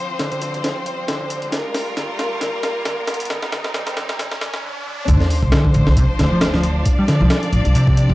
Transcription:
Already playing: F3 C4 C5, riser
0.19 D3, snare, closed hi-hat
0.32 D3, closed hi-hat
0.42 closed hi-hat
0.54 closed hi-hat
0.64 D3, snare, closed hi-hat
0.86 closed hi-hat
1.08 D3, snare, closed hi-hat
1.21 D3
1.30 closed hi-hat
1.42 closed hi-hat
1.52 D3 G3 F4 A#4, snare, closed hi-hat
1.75 snare, open hi-hat
1.97 D3, snare, closed hi-hat
2.19 snare, closed hi-hat
2.41 D3, snare, closed hi-hat
2.63 snare, closed hi-hat
2.85 D3, snare, closed hi-hat
3.07 snare, closed hi-hat
3.14 closed hi-hat
3.20 closed hi-hat
3.25 closed hi-hat
3.30 D3 G3 D#4, snare, closed hi-hat
3.43 snare
3.52 D3, snare, closed hi-hat
3.64 snare
3.74 D3, snare, closed hi-hat
3.87 snare, closed hi-hat
3.97 D3, snare, closed hi-hat
4.09 snare, closed hi-hat
4.19 D3, snare, closed hi-hat
4.32 snare
4.41 D3, snare, closed hi-hat
4.54 snare
4.64 D3
4.86 D3
5.08 D2 D3 F3 D4 C5, kick, closed hi-hat, sub drop
5.21 snare
5.30 open hi-hat
5.43 C2, kick
5.52 D3, snare, closed hi-hat
5.65 D3, kick
5.74 A1, closed hi-hat
5.87 C2, snare
5.97 C3, kick, closed hi-hat
6.19 D2 D3, snare, closed hi-hat
6.32 F3
6.41 snare, closed hi-hat
6.54 F3, snare
6.63 closed hi-hat
6.85 D5, kick, closed hi-hat
6.99 G3
7.08 D3, snare, closed hi-hat
7.21 C2 F3
7.30 snare, closed hi-hat
7.43 closed hi-hat
7.53 A1, closed hi-hat
7.65 C2, closed hi-hat
7.75 C3, closed hi-hat
7.87 kick
7.97 closed hi-hat
8.09 A1

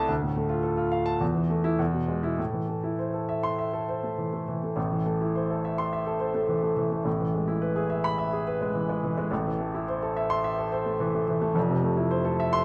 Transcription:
Already playing: C2 C3 A3 E4 A4 E5 A5
0.08 D2
0.22 A2
0.36 A3
0.49 F4
0.63 A4
0.77 F4
0.92 F5
1.06 A5
1.20 E2
1.35 E3
1.50 A3
1.64 E4
1.79 E2
1.94 B2
2.08 G#3
2.23 E4
2.38 A2
2.53 E3
2.68 A3
2.83 E4
2.99 C5
3.14 A4
3.29 E5
3.43 C6
3.58 E5
3.73 A4
3.89 C5
4.03 A3
4.18 E3
4.33 A3
4.48 E3
4.63 A3
4.76 A1 A2
4.92 E3
5.06 A3
5.21 E4
5.35 C5
5.50 A4
5.65 E5
5.78 C6
5.93 E5
6.07 A4
6.20 C5
6.34 A3
6.48 E3
6.63 A3
6.77 E3
6.92 A3
7.04 A1 A2
7.20 E3
7.34 G#3
7.48 E4
7.62 B4
7.76 G#4
7.90 E5
8.04 B5
8.18 E5
8.33 G#4
8.47 B4
8.61 G#3
8.75 E3
8.89 G#3
9.04 E3
9.18 G#3
9.31 A1 A2
9.47 E3
9.61 A3
9.74 E4
9.88 C5
10.03 A4
10.17 E5
10.30 C6
10.44 E5
10.58 A4
10.72 C5
10.86 A3
11.00 E3
11.14 A3
11.28 E3
11.41 A3
11.54 F1 F2
11.69 C3
11.83 A3
11.97 E4
12.11 C5
12.25 A4
12.40 E5
12.53 C6

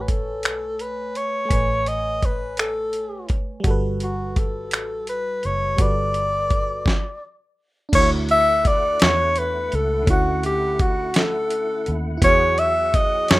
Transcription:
Already playing: A1 A3 B4 C#5 G#5
0.02 B4
0.08 A4, kick, closed hi-hat
0.43 B1, finger snap, closed hi-hat
0.79 B4, closed hi-hat
1.15 G#1 C#5, closed hi-hat
1.45 A3 G#5
1.50 A1 B4, kick, closed hi-hat
1.56 C#5
1.86 D#5, closed hi-hat
2.22 B4, kick, closed hi-hat
2.57 A4, finger snap, closed hi-hat
2.93 closed hi-hat
3.29 F#1, kick, closed hi-hat
3.60 G3 F#4
3.64 G1 A4, kick, closed hi-hat
3.71 B4
4.00 F#4, closed hi-hat
4.36 A4, kick, closed hi-hat
4.71 A1, finger snap, closed hi-hat
5.07 B4, closed hi-hat
5.43 F#1 C#5, closed hi-hat
5.76 G1 G3 F#4 A4, kick, closed hi-hat
5.81 B4 D5
6.14 closed hi-hat
6.50 kick, closed hi-hat
6.86 kick, snare
7.89 A3 D4 E4
7.93 D2 E4 C#5 F#5, kick, closed hi-hat, crash
8.00 F#4
8.29 E5, closed hi-hat
8.65 D5, kick, closed hi-hat
9.00 E2 C#5, snare, closed hi-hat
9.36 B4, closed hi-hat
9.72 C#2 A4, closed hi-hat
10.02 D3 C#4
10.07 D2 E4 F#4, kick, closed hi-hat
10.13 F#5
10.43 G4, closed hi-hat
10.79 F#4, kick, closed hi-hat
11.14 A4, snare, closed hi-hat
11.50 closed hi-hat
11.86 D#2, closed hi-hat
12.17 B3 E4
12.22 E2 F#3 F#4 G#4 C#5, kick, closed hi-hat
12.28 G#4
12.58 E5, closed hi-hat
12.94 D#5, kick, closed hi-hat
13.28 F#2 C#5, snare, closed hi-hat

